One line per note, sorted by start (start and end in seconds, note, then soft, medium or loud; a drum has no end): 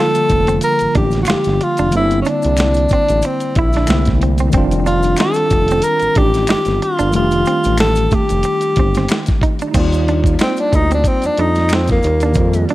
0.00 1.87 D3 medium
0.00 1.89 F3 medium
0.00 1.88 G3 medium
0.00 1.90 A#3 medium
0.00 1.91 F4 medium
0.00 0.59 A4 loud
0.15 closed hi-hat soft
0.15 maracas soft
0.29 0.60 F1 medium
0.29 muted clean electric guitar stroke soft
0.29 kick medium
0.29 closed hi-hat medium
0.29 maracas soft
0.47 0.57 C4 medium
0.47 closed hi-hat soft
0.47 maracas soft
0.61 0.93 A#4 loud
0.61 closed hi-hat medium
0.61 maracas medium
0.79 0.87 A1 soft
0.79 closed hi-hat soft
0.79 maracas soft
0.95 1.25 A1 medium
0.95 1.06 D4 medium
0.95 1.20 G4 medium
0.95 kick loud
0.95 closed hi-hat medium
1.11 closed hi-hat soft
1.11 maracas soft
1.15 snare soft
1.22 1.32 F#4 medium
1.22 finger snap medium
1.22 maracas medium
1.27 1.35 G1 soft
1.27 1.39 F4 medium
1.27 1.65 G4 medium
1.27 snare loud
1.27 closed hi-hat medium
1.44 1.59 G1 medium
1.44 snare soft
1.44 closed hi-hat soft
1.44 maracas soft
1.61 1.94 F4 medium
1.61 muted clean electric guitar stroke soft
1.61 closed hi-hat medium
1.77 1.92 F1 medium
1.77 1.88 D4 medium
1.77 closed hi-hat soft
1.77 maracas soft
1.89 3.82 D3 medium
1.89 3.83 G3 medium
1.89 3.84 A#3 medium
1.89 closed hi-hat medium
1.89 maracas medium
1.94 2.23 G1 loud
1.94 3.85 C4 medium
1.94 2.02 D4 medium
1.94 2.19 E4 loud
2.03 3.90 E4 medium
2.11 closed hi-hat soft
2.11 maracas soft
2.21 2.31 C#4 medium
2.21 maracas soft
2.27 2.37 D4 medium
2.27 2.92 D4 medium
2.27 closed hi-hat medium
2.42 2.87 C2 medium
2.42 closed hi-hat soft
2.42 maracas medium
2.57 finger snap medium
2.57 snare loud
2.57 closed hi-hat medium
2.57 maracas medium
2.74 closed hi-hat soft
2.74 maracas medium
2.89 2.98 A1 soft
2.89 3.27 D4 medium
2.89 kick medium
2.89 closed hi-hat medium
2.89 maracas soft
2.93 3.03 C4 medium
3.09 3.22 A1 medium
3.09 closed hi-hat medium
3.09 maracas soft
3.22 3.59 C4 medium
3.22 muted clean electric guitar stroke soft
3.22 closed hi-hat medium
3.22 maracas medium
3.40 closed hi-hat soft
3.40 maracas soft
3.55 3.86 A#1 medium
3.55 4.21 E4 medium
3.55 3.69 E4 medium
3.55 kick loud
3.55 closed hi-hat medium
3.73 snare soft
3.73 closed hi-hat soft
3.73 maracas soft
3.77 3.85 D4 medium
3.86 4.50 C2 loud
3.86 4.52 D3 medium
3.86 4.53 A3 medium
3.86 4.54 A#3 medium
3.86 4.52 C4 medium
3.86 finger snap medium
3.86 snare loud
3.86 closed hi-hat medium
3.86 maracas medium
3.90 3.96 D#4 medium
3.90 muted clean electric guitar stroke soft
3.97 4.58 E4 medium
4.05 kick medium
4.05 snare soft
4.05 closed hi-hat soft
4.05 maracas soft
4.22 4.33 C4 medium
4.22 closed hi-hat medium
4.38 4.49 C4 medium
4.38 closed hi-hat soft
4.38 maracas soft
4.50 7.08 D#3 medium
4.50 7.09 G3 medium
4.50 kick loud
4.50 closed hi-hat medium
4.50 maracas medium
4.54 5.15 F1 loud
4.54 7.10 C4 medium
4.54 4.65 C4 medium
4.54 7.11 D4 medium
4.58 7.12 F4 medium
4.71 closed hi-hat soft
4.71 maracas soft
4.86 4.97 D4 medium
4.86 5.20 F4 medium
4.86 closed hi-hat medium
4.86 maracas soft
5.03 closed hi-hat soft
5.03 maracas medium
5.17 5.85 A4 loud
5.17 finger snap medium
5.17 snare loud
5.17 closed hi-hat medium
5.17 maracas medium
5.21 5.31 D#4 medium
5.34 closed hi-hat soft
5.34 maracas medium
5.50 5.81 F1 medium
5.50 muted clean electric guitar stroke soft
5.50 kick medium
5.50 closed hi-hat medium
5.50 maracas soft
5.68 5.80 C4 medium
5.68 closed hi-hat medium
5.68 maracas soft
5.82 6.19 A#4 loud
5.82 closed hi-hat medium
5.82 maracas medium
5.99 6.08 A1 soft
5.99 closed hi-hat soft
5.99 maracas soft
6.15 6.46 A1 medium
6.15 6.28 D4 medium
6.15 6.49 G4 loud
6.15 kick medium
6.15 closed hi-hat medium
6.34 snare soft
6.34 closed hi-hat soft
6.34 maracas soft
6.47 6.56 G1 soft
6.47 6.60 D#4 medium
6.47 6.84 G4 medium
6.47 finger snap medium
6.47 snare loud
6.47 closed hi-hat medium
6.47 maracas medium
6.65 6.80 G1 medium
6.65 snare soft
6.65 closed hi-hat soft
6.65 maracas soft
6.82 7.15 F4 medium
6.82 muted clean electric guitar stroke soft
6.82 closed hi-hat medium
6.99 7.13 G1 medium
6.99 7.08 D4 medium
6.99 closed hi-hat soft
6.99 maracas soft
7.10 9.69 D#3 medium
7.10 9.70 G3 medium
7.10 closed hi-hat medium
7.10 maracas medium
7.14 7.44 F1 loud
7.14 9.71 A3 medium
7.14 9.72 D4 medium
7.14 7.76 F4 medium
7.19 9.73 G4 medium
7.31 closed hi-hat soft
7.31 maracas soft
7.45 7.58 C4 medium
7.45 closed hi-hat medium
7.45 maracas soft
7.64 8.08 A1 medium
7.64 closed hi-hat medium
7.64 maracas medium
7.78 8.16 A4 loud
7.78 finger snap medium
7.78 snare loud
7.78 closed hi-hat medium
7.78 maracas medium
7.95 closed hi-hat soft
7.95 maracas medium
8.11 8.20 F1 soft
8.11 8.23 A3 medium
8.11 9.43 G4 medium
8.11 kick medium
8.11 closed hi-hat medium
8.11 maracas soft
8.29 8.44 F1 medium
8.29 closed hi-hat soft
8.29 maracas medium
8.43 muted clean electric guitar stroke soft
8.43 closed hi-hat medium
8.43 maracas medium
8.61 closed hi-hat soft
8.61 maracas soft
8.76 9.07 G1 medium
8.76 8.90 C4 medium
8.76 kick medium
8.76 closed hi-hat medium
8.94 9.06 C4 medium
8.94 snare soft
8.94 closed hi-hat soft
8.94 maracas soft
9.08 finger snap medium
9.08 muted clean electric guitar stroke soft
9.08 snare loud
9.08 closed hi-hat medium
9.08 maracas medium
9.26 kick medium
9.26 snare soft
9.26 closed hi-hat soft
9.26 maracas soft
9.41 9.54 D#4 medium
9.41 kick medium
9.41 closed hi-hat medium
9.59 9.70 D4 medium
9.59 closed hi-hat soft
9.59 maracas soft
9.71 10.36 D#2 medium
9.71 12.31 G3 medium
9.71 9.86 C4 medium
9.71 12.30 D#4 medium
9.71 kick loud
9.71 closed hi-hat medium
9.71 crash medium
9.71 maracas medium
9.75 12.32 A#3 medium
9.75 12.34 F4 medium
9.75 12.33 D5 medium
9.92 closed hi-hat soft
9.92 maracas soft
10.08 10.19 D4 medium
10.08 closed hi-hat medium
10.24 kick medium
10.24 closed hi-hat soft
10.24 maracas medium
10.39 10.62 C4 medium
10.39 10.52 D#4 medium
10.39 finger snap medium
10.39 snare loud
10.39 closed hi-hat medium
10.39 maracas medium
10.57 10.77 D4 medium
10.57 closed hi-hat soft
10.57 maracas soft
10.72 11.03 D2 medium
10.72 10.92 D#4 loud
10.72 muted clean electric guitar stroke soft
10.72 kick medium
10.72 closed hi-hat medium
10.72 maracas soft
10.91 11.00 C4 medium
10.91 11.09 D4 medium
10.91 closed hi-hat soft
10.91 maracas soft
11.04 11.27 C4 medium
11.04 kick medium
11.04 closed hi-hat medium
11.04 maracas medium
11.22 11.30 F2 soft
11.22 11.42 D4 medium
11.22 closed hi-hat soft
11.22 maracas soft
11.37 11.99 F2 medium
11.37 11.50 D4 medium
11.37 11.75 D#4 medium
11.37 closed hi-hat medium
11.55 snare soft
11.55 closed hi-hat soft
11.55 maracas soft
11.69 finger snap medium
11.69 snare loud
11.69 closed hi-hat medium
11.69 maracas medium
11.73 11.90 C4 medium
11.73 11.84 D#4 medium
11.87 12.20 A#3 medium
11.87 kick medium
11.87 snare soft
11.87 closed hi-hat soft
11.87 maracas soft
12.03 12.33 D#2 medium
12.03 closed hi-hat medium
12.03 maracas soft
12.07 muted clean electric guitar stroke soft
12.20 12.31 D4 medium
12.20 closed hi-hat soft
12.20 maracas soft
12.25 12.75 A#3 medium
12.32 12.66 F2 loud
12.32 12.75 D#3 medium
12.32 12.75 G3 medium
12.32 12.75 A#3 medium
12.32 kick loud
12.32 closed hi-hat medium
12.32 maracas medium
12.38 12.75 C4 medium
12.38 12.75 F4 medium
12.54 closed hi-hat soft
12.54 maracas soft
12.69 12.75 D4 medium
12.69 closed hi-hat soft